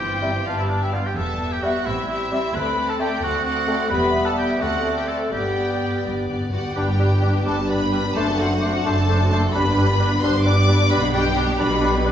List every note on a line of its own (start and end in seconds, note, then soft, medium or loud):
0.00 0.44 G1 soft
0.00 0.45 G2 soft
0.00 0.46 E3 soft
0.00 0.44 C4 soft
0.00 0.46 C4 medium
0.00 0.45 G4 medium
0.00 0.45 C5 soft
0.00 0.44 G5 medium
0.10 0.46 F4 soft
0.22 0.30 G3 soft
0.22 0.31 C4 soft
0.22 0.33 E5 soft
0.45 0.95 G1 soft
0.45 0.96 G2 soft
0.45 0.94 G3 soft
0.45 0.97 B3 soft
0.45 0.94 B3 soft
0.45 0.58 F4 medium
0.45 0.96 G4 soft
0.45 0.95 D5 soft
0.45 0.57 F5 soft
0.45 0.80 A5 soft
0.57 0.71 E4 soft
0.57 0.62 E5 soft
0.68 0.81 D4 soft
0.68 0.80 D5 soft
0.79 0.92 E5 soft
0.79 0.94 G5 soft
0.83 0.96 E4 soft
0.91 1.01 G3 soft
0.91 1.01 B3 soft
0.91 1.08 F4 soft
0.91 1.04 F5 soft
0.91 1.01 F5 soft
1.04 1.18 G4 soft
1.04 1.16 G5 soft
1.16 1.75 E1 medium
1.16 1.75 E2 medium
1.16 1.82 G3 soft
1.16 1.82 B3 soft
1.16 1.39 B3 soft
1.16 1.39 G4 soft
1.16 1.54 A4 medium
1.16 1.39 E5 soft
1.16 1.51 A5 medium
1.40 1.61 B3 soft
1.40 1.61 G4 soft
1.40 1.62 E5 soft
1.52 1.64 G4 soft
1.52 1.63 G5 soft
1.62 1.71 G3 soft
1.62 1.85 B3 soft
1.62 1.71 B3 soft
1.62 1.87 F#4 medium
1.62 1.84 G4 soft
1.62 1.85 E5 soft
1.62 1.74 E5 soft
1.62 1.86 F#5 soft
1.85 2.44 A1 medium
1.85 2.45 A2 medium
1.85 2.54 G3 soft
1.85 2.07 C4 soft
1.85 2.54 C4 soft
1.85 2.08 E4 medium
1.85 2.07 G4 soft
1.85 2.08 E5 medium
1.85 2.09 E5 soft
2.08 2.31 C4 soft
2.08 2.56 E4 medium
2.08 2.31 G4 soft
2.08 2.54 E5 medium
2.08 2.33 E5 soft
2.31 2.40 G3 soft
2.31 2.40 C4 medium
2.31 2.54 C4 soft
2.31 2.55 G4 soft
2.31 2.43 E5 soft
2.31 2.55 E5 soft
2.54 3.12 D2 medium
2.54 3.13 D2 medium
2.54 3.22 A3 medium
2.54 2.76 C4 medium
2.54 3.22 C4 medium
2.54 2.76 A4 soft
2.54 2.92 B4 medium
2.54 2.77 D5 soft
2.54 2.89 B5 medium
2.77 3.00 C4 soft
2.77 3.00 A4 soft
2.77 2.99 D5 soft
2.89 3.02 A4 medium
2.89 3.00 A5 soft
3.00 3.08 A3 medium
3.00 3.08 C4 medium
3.00 3.22 C4 medium
3.00 3.23 G4 medium
3.00 3.23 A4 medium
3.00 3.21 D5 soft
3.00 3.11 D5 medium
3.00 3.23 G5 medium
3.22 3.80 D2 medium
3.22 3.81 D2 medium
3.22 3.90 A3 medium
3.22 3.90 C4 medium
3.22 3.46 C4 medium
3.22 3.44 F#4 medium
3.22 3.46 A4 soft
3.22 3.45 D5 soft
3.22 3.45 F#5 medium
3.45 3.68 C4 soft
3.45 3.89 F#4 medium
3.45 3.68 A4 soft
3.45 3.69 D5 soft
3.45 3.91 F#5 medium
3.68 3.76 A3 medium
3.68 3.76 C4 medium
3.68 3.91 C4 soft
3.68 3.91 A4 soft
3.68 3.80 D5 soft
3.68 3.92 D5 soft
3.89 4.50 E1 medium
3.89 4.50 E2 medium
3.89 4.62 G3 medium
3.89 4.61 G3 medium
3.89 4.13 B3 medium
3.89 4.62 B3 medium
3.89 4.61 B3 medium
3.89 4.12 G4 medium
3.89 4.28 B4 medium
3.89 4.14 B4 medium
3.89 4.57 E5 medium
3.89 4.25 B5 medium
4.14 4.35 B3 soft
4.14 4.35 G4 soft
4.14 4.37 B4 soft
4.26 4.37 A4 medium
4.26 4.38 A5 medium
4.36 4.60 B3 soft
4.36 4.60 G4 soft
4.36 4.63 G4 medium
4.36 4.61 B4 soft
4.36 4.61 G5 medium
4.59 5.21 D2 medium
4.59 5.31 A3 medium
4.59 5.33 A3 medium
4.59 5.32 C4 soft
4.59 5.31 C4 soft
4.59 4.83 C4 soft
4.59 4.97 F#4 medium
4.59 4.83 A4 soft
4.59 4.83 D5 soft
4.59 5.31 D5 medium
4.59 4.96 F#5 medium
4.84 5.06 C4 soft
4.84 5.06 A4 soft
4.84 5.06 D5 soft
4.97 5.10 G4 medium
4.97 5.09 G5 soft
5.07 5.31 C4 soft
5.07 5.31 A4 soft
5.07 5.32 A4 medium
5.07 5.31 D5 soft
5.07 5.17 A5 soft
5.30 5.93 G1 medium
5.30 5.93 G2 soft
5.30 5.40 G2 soft
5.30 6.49 G3 soft
5.30 6.52 G3 soft
5.30 6.49 B3 soft
5.30 6.50 B3 soft
5.30 5.56 B3 soft
5.30 6.03 G4 medium
5.30 5.56 G4 soft
5.30 5.54 D5 soft
5.30 6.50 D5 soft
5.30 6.03 G5 soft
5.41 5.46 G2 soft
5.48 5.54 G2 soft
5.56 5.63 G2 soft
5.56 5.80 B3 soft
5.56 5.80 G4 soft
5.56 5.80 D5 soft
5.64 5.71 G2 soft
5.72 5.79 G2 soft
5.80 5.87 G2 soft
5.80 6.04 B3 soft
5.80 6.04 G4 soft
5.80 6.03 D5 soft
5.88 5.95 G2 soft
5.96 6.03 G2 soft
6.04 6.65 G1 soft
6.04 6.65 G2 soft
6.04 6.28 B3 soft
6.04 6.27 G4 soft
6.04 6.26 D5 soft
6.11 6.17 G2 soft
6.19 6.25 G2 soft
6.27 6.34 G2 medium
6.27 6.51 B3 soft
6.27 6.52 G4 soft
6.27 6.51 D5 soft
6.36 6.42 G2 medium
6.43 6.48 G2 medium
6.50 6.56 G2 medium
6.50 6.76 B3 soft
6.50 6.61 F#4 soft
6.50 6.76 G4 soft
6.50 6.76 D5 soft
6.50 6.74 F#5 medium
6.58 6.64 G2 medium
6.65 6.72 G2 medium
6.76 7.38 G1 medium
6.76 7.39 G2 medium
6.76 7.43 G2 medium
6.76 6.87 G3 medium
6.76 6.87 G3 soft
6.76 8.12 B3 medium
6.76 9.50 D4 medium
6.76 6.87 D4 soft
6.76 6.87 D4 medium
6.76 7.45 G4 medium
6.76 6.87 B4 soft
6.76 7.46 G5 medium
6.76 6.82 D6 medium
6.88 7.00 B3 soft
6.88 7.00 G4 soft
6.99 7.10 G3 medium
6.99 7.11 G3 soft
6.99 7.11 D4 soft
6.99 7.11 B4 medium
6.99 7.06 D6 soft
7.11 7.23 B3 soft
7.11 7.23 G4 soft
7.22 7.33 G3 soft
7.22 7.34 G3 medium
7.22 7.34 D4 soft
7.22 7.33 B4 soft
7.22 7.28 D6 soft
7.36 7.47 B3 soft
7.36 7.47 G4 soft
7.45 8.08 G1 medium
7.45 8.08 G2 medium
7.45 7.56 G3 medium
7.45 7.58 G3 medium
7.45 7.57 D4 medium
7.45 7.58 D4 soft
7.45 7.54 A4 medium
7.45 7.57 B4 soft
7.45 7.69 A5 medium
7.45 7.52 D6 soft
7.59 7.70 B3 soft
7.59 7.70 G4 soft
7.68 7.80 G3 soft
7.68 7.81 G3 soft
7.68 7.81 D4 soft
7.68 8.15 B4 medium
7.68 7.80 B4 soft
7.68 8.16 B5 medium
7.68 7.75 D6 soft
7.83 7.94 B3 soft
7.83 7.94 G4 soft
7.92 8.04 G3 soft
7.92 8.05 G3 soft
7.92 8.05 D4 soft
7.92 8.03 B4 soft
7.92 7.98 D6 soft
8.05 8.16 B3 soft
8.05 8.16 G4 soft
8.15 8.77 F#1 medium
8.15 8.78 F#2 medium
8.15 8.27 A3 soft
8.15 8.27 A3 medium
8.15 9.52 C4 medium
8.15 8.27 D4 medium
8.15 8.28 D4 medium
8.15 8.39 A4 medium
8.15 8.26 C5 medium
8.15 8.39 A5 medium
8.15 8.21 D6 medium
8.28 8.40 C4 soft
8.28 8.40 F#4 soft
8.38 8.50 A3 medium
8.38 8.51 A3 soft
8.38 8.51 D4 soft
8.38 8.85 F#4 medium
8.38 8.50 C5 medium
8.38 8.86 F#5 medium
8.38 8.44 D6 soft
8.42 8.52 D4 soft
8.50 8.62 C4 soft
8.50 8.62 F#4 soft
8.61 8.73 A3 medium
8.61 8.74 A3 soft
8.61 8.73 D4 medium
8.61 8.74 D4 soft
8.61 8.73 C5 soft
8.61 8.67 D6 soft
8.74 8.86 C4 soft
8.74 8.86 F#4 soft
8.85 9.47 F#1 medium
8.85 9.47 F#2 medium
8.85 8.96 A3 medium
8.85 8.97 A3 medium
8.85 8.96 D4 medium
8.85 8.97 D4 soft
8.85 9.29 A4 medium
8.85 8.97 C5 medium
8.85 9.29 A5 medium
8.85 8.91 D6 medium
8.98 9.09 C4 soft
8.98 9.09 F#4 soft
9.09 9.19 A3 medium
9.09 9.20 A3 soft
9.09 9.19 D4 medium
9.09 9.20 D4 soft
9.09 9.20 C5 medium
9.09 9.15 D6 medium
9.22 9.33 C4 soft
9.22 9.32 F#4 soft
9.30 9.43 A3 medium
9.30 9.44 A3 soft
9.30 9.42 D4 medium
9.30 9.44 D4 medium
9.30 9.53 A4 medium
9.30 9.43 C5 soft
9.30 9.39 A5 medium
9.30 9.38 D6 soft
9.43 9.54 C4 soft
9.43 9.55 F#4 soft
9.53 10.15 G1 medium
9.53 10.15 G2 medium
9.53 9.65 G3 medium
9.53 9.66 G3 medium
9.53 12.12 B3 medium
9.53 9.65 D4 medium
9.53 12.12 D4 medium
9.53 9.66 D4 medium
9.53 10.23 B4 medium
9.53 9.65 B4 medium
9.53 10.22 B5 medium
9.53 9.59 D6 medium
9.66 9.77 B3 soft
9.66 9.78 G4 medium
9.77 9.89 G3 soft
9.77 9.88 G3 medium
9.77 9.89 D4 soft
9.77 9.88 D4 soft
9.77 9.87 B4 medium
9.77 9.83 D6 medium
9.88 10.00 B3 medium
9.88 10.00 G4 medium
9.99 10.10 G3 medium
9.99 10.10 D4 medium
9.99 10.11 D4 medium
9.99 10.11 B4 medium
9.99 10.06 D6 medium
10.11 10.23 B3 soft
10.11 10.23 G4 soft
10.22 10.83 G1 medium
10.22 10.83 G2 medium
10.22 10.34 G3 medium
10.22 10.33 G3 medium
10.22 10.34 D4 medium
10.22 10.33 D4 medium
10.22 10.33 B4 medium
10.22 10.32 C5 medium
10.22 10.45 C6 medium
10.22 10.29 D6 medium
10.35 10.46 B3 soft
10.35 10.46 G4 medium
10.45 10.56 G3 medium
10.45 10.56 D4 soft
10.45 10.56 D4 medium
10.45 10.55 B4 medium
10.45 10.90 D5 medium
10.45 10.89 D6 medium
10.45 10.52 D6 medium
10.56 10.68 B3 medium
10.56 10.68 G4 medium
10.67 10.79 G3 medium
10.67 10.79 D4 medium
10.67 10.78 B4 medium
10.67 10.73 D6 medium
10.79 10.91 B3 medium
10.79 10.91 G4 soft
10.90 11.51 B1 medium
10.90 11.51 B2 medium
10.90 11.01 G3 medium
10.90 11.01 D4 medium
10.90 11.01 B4 medium
10.90 10.98 B4 medium
10.90 11.14 B5 medium
10.90 10.97 D6 medium
11.02 11.14 B3 medium
11.02 11.13 G4 medium
11.13 11.24 G3 medium
11.13 11.25 G3 soft
11.13 11.24 D4 medium
11.13 11.25 D4 soft
11.13 11.58 G4 medium
11.13 11.24 B4 medium
11.13 11.58 G5 medium
11.13 11.19 D6 medium
11.24 11.36 B3 medium
11.24 11.36 G4 medium
11.35 11.46 G3 medium
11.35 11.47 G3 medium
11.35 11.47 D4 medium
11.35 11.47 B4 medium
11.35 11.41 D6 medium
11.48 11.59 B3 medium
11.48 11.59 G4 medium
11.58 12.12 B1 medium
11.58 12.12 B2 medium
11.58 11.70 G3 medium
11.58 11.71 G3 medium
11.58 11.70 D4 medium
11.58 11.71 D4 medium
11.58 11.69 B4 medium
11.58 12.05 B4 medium
11.58 12.04 B5 medium
11.58 11.66 D6 medium
11.72 11.83 B3 medium
11.72 11.83 G4 medium
11.81 11.93 G3 medium
11.81 11.92 D4 medium
11.81 11.93 D4 medium
11.81 11.92 B4 medium
11.81 11.87 D6 medium
11.94 12.05 B3 medium
11.94 12.05 G4 medium
12.05 12.12 G3 medium
12.05 12.12 D4 medium
12.05 12.12 B4 medium
12.05 12.11 D6 medium